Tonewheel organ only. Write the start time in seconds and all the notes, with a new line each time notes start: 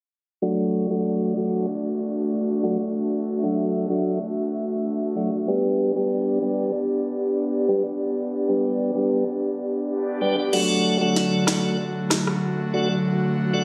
0.42 F#3 A3 D4 F#4
0.90 F#3 A3 D4 F#4
1.37 F#3 A3 D4 F#4
2.63 F#3 A3 D4 F#4
3.43 F#3 A3 D4 F#4
3.89 F#3 A3 D4 F#4
5.16 F#3 A3 D4 F#4
5.47 G3 B3 D4 G4
5.96 G3 B3 D4 G4
6.42 G3 B3 D4 G4
7.68 G3 B3 D4 G4
8.48 G3 B3 D4 G4
8.95 G3 B3 D4 G4
10.21 G3 B3 D4 G4
10.53 F#3 A3 D4 F#4
11.01 F#3 A3 D4 F#4
11.47 F#3 A3 D4 F#4
12.74 F#3 A3 D4 F#4
13.53 F#3 A3 D4 F#4